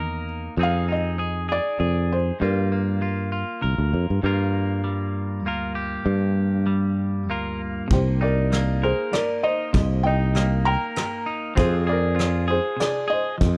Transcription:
Already playing: fretless electric bass E2, clean electric guitar D#3 A#3 D#4 A#4, felt piano A#5
0.57 fretless electric bass F2, clean electric guitar F3 C4 D#4 G#4
0.63 felt piano F5
0.88 clean electric guitar D#4, felt piano D#5
1.18 clean electric guitar C4 G#4
1.49 clean electric guitar G#4, felt piano D5
1.79 fretless electric bass F2, clean electric guitar C3 G#4
2.12 felt piano C5
2.40 clean electric guitar G2 G3 A#3 F4, fretless electric bass G2, felt piano A#4
2.72 clean electric guitar A#3
3.01 clean electric guitar G3 F4
3.32 clean electric guitar F4
3.61 fretless electric bass C2, clean electric guitar D3 A#4
3.78 fretless electric bass D2
3.93 fretless electric bass F2
4.10 fretless electric bass G2
4.23 clean electric guitar G2 G3 A#3 F4 A#4, fretless electric bass G2
4.84 clean electric guitar G3
5.46 fretless electric bass D2, clean electric guitar A#3 F4 A#4
5.75 clean electric guitar G4
6.05 clean electric guitar G2, fretless electric bass G2
6.66 clean electric guitar G3
7.30 fretless electric bass D2, clean electric guitar A#3 F4 A#4
7.88 fretless electric bass C2, clean electric guitar C3, kick, ride
7.92 felt piano G4 C5
8.21 clean electric guitar D#4, felt piano A#4 D5
8.52 clean electric guitar G3 A#3, cross-stick, ride
8.83 felt piano G#4 C5, clean electric guitar A#4
9.12 clean electric guitar G2, felt piano A#4 D5, cross-stick, ride
9.43 clean electric guitar D#4, felt piano C5 D#5
9.73 fretless electric bass C2, clean electric guitar C3, kick, ride
10.03 clean electric guitar D#4, felt piano D#5 G5
10.35 clean electric guitar G3 A#3, cross-stick, ride
10.65 clean electric guitar A#4, felt piano G5 A#5
10.96 clean electric guitar G2, cross-stick, ride
11.26 clean electric guitar D#4
11.55 fretless electric bass F2, clean electric guitar F3 C4 F4 G#4, felt piano C5, kick, ride
11.60 felt piano G#4
11.87 clean electric guitar G#4, felt piano D5
11.91 felt piano A#4
12.15 clean electric guitar C4 F4, ride
12.20 cross-stick
12.48 clean electric guitar G#4, felt piano G#4 C5
12.77 clean electric guitar C3, felt piano D5, ride
12.81 felt piano G#4, cross-stick
13.08 clean electric guitar G#4, felt piano D#5
13.13 felt piano C5
13.38 fretless electric bass F2, clean electric guitar F3, kick, ride

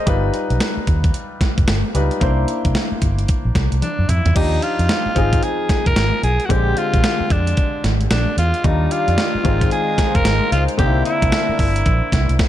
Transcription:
Already playing: grand piano D#5
0.06 fingered electric bass G1, grand piano G3 D#4 F4 B4, kick, closed hi-hat
0.34 closed hi-hat
0.50 fingered electric bass B1, closed hi-hat
0.60 snare, closed hi-hat
0.77 muted fingered electric bass stroke
0.87 fingered electric bass D#2, kick, closed hi-hat
1.04 kick, closed hi-hat
1.14 closed hi-hat
1.41 muted fingered electric bass stroke, kick, snare, closed hi-hat
1.58 fingered electric bass F1, kick, closed hi-hat
1.68 fingered electric bass G1, snare, closed hi-hat
1.94 fingered electric bass C#2, grand piano G3 D#4 F4 B4, closed hi-hat
2.11 closed hi-hat
2.20 fingered electric bass C2, grand piano A#3 D4 E4 C5, kick, closed hi-hat
2.48 closed hi-hat
2.65 fingered electric bass C2, kick, closed hi-hat
2.75 snare, closed hi-hat
2.92 muted fingered electric bass stroke
3.02 fingered electric bass G1, kick, closed hi-hat
3.19 closed hi-hat
3.28 kick, closed hi-hat
3.45 fingered electric bass A#1
3.55 fingered electric bass C2, kick, snare, closed hi-hat
3.72 fingered electric bass C2, closed hi-hat
3.82 tenor saxophone D4, closed hi-hat, high tom
3.99 fingered electric bass F#2
4.09 fingered electric bass F2, tenor saxophone E4, closed hi-hat, mid tom
4.25 fingered electric bass E2, closed hi-hat, floor tom
4.35 fingered electric bass D#2, grand piano F3 D4 D#4 G4, tenor saxophone D#4, kick, closed hi-hat, crash
4.62 tenor saxophone F4, closed hi-hat
4.79 fingered electric bass F2, closed hi-hat
4.89 snare, closed hi-hat
5.06 muted fingered electric bass stroke
5.15 fingered electric bass G#1, grand piano F3 C4 D#4 G#4, kick, closed hi-hat
5.33 kick, closed hi-hat
5.43 tenor saxophone G#4, closed hi-hat
5.69 muted fingered electric bass stroke, kick, snare, closed hi-hat
5.86 fingered electric bass F1, tenor saxophone A#4, kick, closed hi-hat
5.96 fingered electric bass G#1, snare, closed hi-hat
6.23 fingered electric bass B1, tenor saxophone G#4, closed hi-hat
6.40 closed hi-hat
6.45 grand piano D3, tenor saxophone F#4
6.50 fingered electric bass A#1, grand piano G#3 C4 G4, tenor saxophone G4, kick, closed hi-hat
6.77 tenor saxophone F4, closed hi-hat
6.94 fingered electric bass A#1, kick, closed hi-hat
7.04 snare, closed hi-hat
7.20 muted fingered electric bass stroke
7.30 fingered electric bass F2, tenor saxophone D4, kick, closed hi-hat
7.47 closed hi-hat
7.57 kick, closed hi-hat
7.84 fingered electric bass G#1, snare, closed hi-hat
8.01 closed hi-hat
8.11 fingered electric bass A#1, tenor saxophone D4, snare, closed hi-hat
8.37 fingered electric bass E2, tenor saxophone F4, closed hi-hat
8.54 closed hi-hat
8.64 fingered electric bass D#2, grand piano D#3 G3 D4 F4, analog synth pad D#3 G4 D5 F5, tenor saxophone D#4, kick, closed hi-hat
8.91 tenor saxophone F4, closed hi-hat
9.08 fingered electric bass F2, closed hi-hat
9.18 snare, closed hi-hat
9.35 muted fingered electric bass stroke
9.44 fingered electric bass G#1, grand piano D#3 G#3 C4 F4, analog synth pad D#4 G#4 C5 F5, kick, closed hi-hat
9.61 kick, closed hi-hat
9.71 tenor saxophone G#4, closed hi-hat
9.98 muted fingered electric bass stroke, kick, snare, closed hi-hat
10.15 fingered electric bass F1, tenor saxophone A#4, kick, closed hi-hat
10.25 fingered electric bass G#1, snare, closed hi-hat
10.52 fingered electric bass C#2, tenor saxophone F4, closed hi-hat
10.68 closed hi-hat
10.78 fingered electric bass C2, grand piano D3 A#3 C4 D#4, analog synth pad D4 A#4 E5, tenor saxophone G4, kick, closed hi-hat
10.87 grand piano E4
11.05 tenor saxophone E4, closed hi-hat
11.22 fingered electric bass C2, kick, closed hi-hat
11.32 snare, closed hi-hat
11.49 muted fingered electric bass stroke
11.59 fingered electric bass G1, tenor saxophone E4, kick, open hi-hat
11.76 closed hi-hat
11.86 fingered electric bass A#1, kick, closed hi-hat
12.12 fingered electric bass C2, kick, snare, closed hi-hat
12.29 fingered electric bass C2, closed hi-hat
12.39 kick, snare

